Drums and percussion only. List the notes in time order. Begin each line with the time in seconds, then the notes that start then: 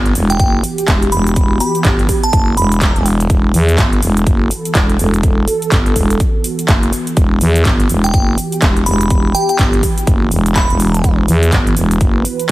0.06 closed hi-hat
0.15 open hi-hat, shaker
0.30 closed hi-hat, shaker
0.40 kick, closed hi-hat, shaker
0.64 open hi-hat, shaker
0.78 closed hi-hat, shaker
0.88 kick, clap, closed hi-hat, shaker
1.02 closed hi-hat
1.12 open hi-hat, shaker
1.27 closed hi-hat, shaker
1.36 kick, closed hi-hat, shaker
1.60 open hi-hat, shaker
1.75 closed hi-hat, shaker
1.85 kick, clap, closed hi-hat, shaker
1.99 closed hi-hat
2.09 kick, open hi-hat, shaker
2.23 closed hi-hat, shaker
2.33 kick, closed hi-hat, shaker
2.57 open hi-hat, shaker
2.72 closed hi-hat, shaker
2.81 kick, clap, closed hi-hat, shaker
2.96 closed hi-hat
3.06 open hi-hat, shaker
3.20 closed hi-hat, shaker
3.30 kick, closed hi-hat, shaker
3.54 open hi-hat, shaker
3.69 closed hi-hat, shaker
3.78 kick, clap, closed hi-hat, shaker
3.93 closed hi-hat
4.02 open hi-hat, shaker
4.17 closed hi-hat, shaker
4.27 kick, closed hi-hat, shaker
4.51 open hi-hat, shaker
4.65 closed hi-hat, shaker
4.75 kick, clap, closed hi-hat, shaker
4.90 closed hi-hat
4.99 open hi-hat, shaker
5.14 closed hi-hat, shaker
5.23 kick, closed hi-hat, shaker
5.48 open hi-hat, shaker
5.62 closed hi-hat, shaker
5.72 kick, clap, closed hi-hat, shaker
5.86 closed hi-hat
5.96 kick, open hi-hat, shaker
6.10 closed hi-hat, shaker
6.20 kick, closed hi-hat, shaker
6.44 open hi-hat, shaker
6.59 closed hi-hat, shaker
6.68 kick, clap, closed hi-hat, shaker
6.83 closed hi-hat
6.93 open hi-hat, shaker
7.07 closed hi-hat, shaker
7.17 kick, closed hi-hat, shaker
7.41 open hi-hat, shaker
7.56 closed hi-hat, shaker
7.65 kick, clap, closed hi-hat, shaker
7.80 closed hi-hat
7.89 open hi-hat, shaker
8.04 closed hi-hat, shaker
8.14 kick, closed hi-hat, shaker
8.38 open hi-hat, shaker
8.52 closed hi-hat, shaker
8.62 kick, clap, closed hi-hat, shaker
8.77 closed hi-hat
8.86 open hi-hat, shaker
9.01 closed hi-hat, shaker
9.10 kick, closed hi-hat, shaker
9.35 open hi-hat, shaker
9.49 closed hi-hat, shaker
9.59 kick, clap, closed hi-hat, shaker
9.73 closed hi-hat
9.83 kick, open hi-hat, shaker
9.98 closed hi-hat, shaker
10.07 kick, closed hi-hat, shaker
10.31 open hi-hat, shaker
10.46 closed hi-hat, shaker
10.56 kick, clap, closed hi-hat, shaker
10.70 closed hi-hat
10.80 open hi-hat, shaker
10.94 closed hi-hat, shaker
11.04 kick, closed hi-hat, shaker
11.28 open hi-hat, shaker
11.43 closed hi-hat, shaker
11.52 kick, clap, closed hi-hat, shaker
11.67 closed hi-hat
11.77 open hi-hat, shaker
11.91 closed hi-hat, shaker
12.01 kick, closed hi-hat, shaker
12.25 open hi-hat, shaker
12.40 closed hi-hat, shaker